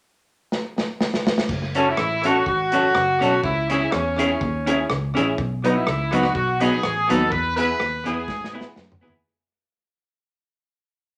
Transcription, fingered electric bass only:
1.49 1.91 F#1 loud
1.98 2.39 A1 medium
2.47 2.88 G#1 medium
2.95 3.18 F#1 medium
3.22 3.41 B1 medium
3.44 3.85 C#2 loud
3.93 4.34 E2 medium
4.41 4.83 D#2 medium
4.90 5.12 C#2 medium
5.17 5.35 A1 medium
5.39 5.80 B1 loud
5.88 6.29 C#2 medium
6.35 6.76 B1 medium
6.85 7.06 A1 medium
7.11 7.29 D#2 medium
7.32 7.73 E2 loud
7.81 8.03 D#2 medium
8.07 8.25 E2 medium
8.28 8.69 G#2 medium
8.77 8.99 F#2 loud
9.03 9.21 D#2 medium

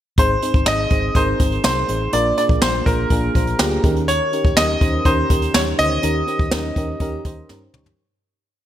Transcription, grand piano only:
0.19 0.64 C5 medium
0.68 1.17 D#5 medium
1.16 1.63 C5 medium
1.65 2.10 C5 medium
2.13 2.36 D5 medium
2.38 2.43 D5 medium
2.62 2.87 C5 medium
2.86 3.80 A#4 medium
4.08 4.58 C#5 medium
4.57 5.07 D#5 medium
5.06 5.56 C5 medium
5.54 5.60 C#5 medium
5.79 7.46 D#5 loud

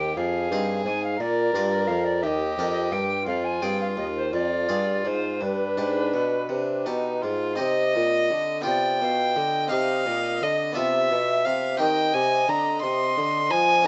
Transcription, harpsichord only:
0.00 0.13 D#2 soft
0.17 0.48 F2 soft
0.52 0.83 G2 soft
0.52 1.01 C4 soft
0.52 1.02 D#4 soft
0.52 1.02 G#4 soft
0.86 1.17 G#2 soft
1.20 1.51 A#2 soft
1.55 1.86 G2 soft
1.55 2.05 D4 soft
1.55 2.05 F4 soft
1.55 2.05 A#4 soft
1.89 2.20 F2 soft
2.24 2.55 D#2 soft
2.59 2.90 F2 soft
2.59 3.08 D4 soft
2.59 3.09 G4 soft
2.59 3.09 A#4 soft
2.92 3.24 G2 soft
3.27 3.58 F2 soft
3.62 3.94 G2 soft
3.62 3.88 C4 soft
3.62 4.13 F4 soft
3.62 4.14 G#4 soft
3.97 4.30 D#2 soft
4.33 4.66 F2 soft
4.69 5.02 G2 soft
4.69 5.21 D4 soft
4.69 5.21 F4 soft
4.69 5.22 G#4 soft
5.05 5.38 G#2 soft
5.41 5.74 G2 soft
5.77 6.10 G#2 soft
5.77 6.30 D4 soft
5.77 6.57 G4 soft
6.14 6.47 B2 soft
6.49 6.83 C3 soft
6.86 7.20 B2 soft
6.86 7.13 D4 soft
6.86 7.39 G4 soft
7.24 7.56 G#2 soft
7.55 8.61 C4 soft
7.55 8.61 D#4 soft
7.55 8.62 G4 soft
7.60 7.92 C3 soft
7.96 8.27 A#2 soft
8.31 8.63 D3 soft
8.62 9.65 B3 soft
8.62 9.66 F4 soft
8.62 9.67 G4 soft
8.67 8.98 C3 soft
9.02 9.33 B2 soft
9.36 9.68 D3 soft
9.68 10.71 C4 soft
9.68 10.72 D#4 soft
9.68 10.73 G4 soft
9.72 10.03 C3 soft
10.06 10.37 A#2 soft
10.41 10.72 D3 soft
10.72 11.75 B3 soft
10.72 11.76 D4 soft
10.72 11.77 F4 soft
10.77 11.08 C3 soft
11.12 11.43 B2 soft
11.46 11.77 C3 soft
11.77 13.81 C4 soft
11.77 13.82 D#4 soft
11.77 13.83 G4 soft
11.81 12.12 D#3 soft
12.15 12.46 C3 soft
12.49 12.80 D3 soft
12.84 13.14 C3 soft
13.18 13.49 D3 soft
13.53 13.84 F3 soft
13.82 13.87 C#4 soft
13.82 13.87 D#4 soft

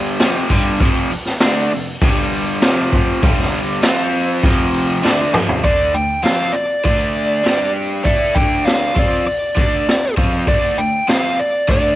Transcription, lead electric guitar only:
5.64 5.95 D5 medium
5.94 6.24 G5 loud
6.24 6.55 F5 medium
6.52 6.83 D5 medium
6.85 7.71 D5 medium
8.05 8.36 D5 medium
8.35 8.65 G5 loud
8.66 8.97 F5 medium
8.99 9.26 D5 medium
9.27 10.13 D5 medium
10.48 10.79 D5 medium
10.78 11.06 G5 loud
11.09 11.40 F5 medium
11.39 11.70 D5 medium
11.72 11.96 D5 medium

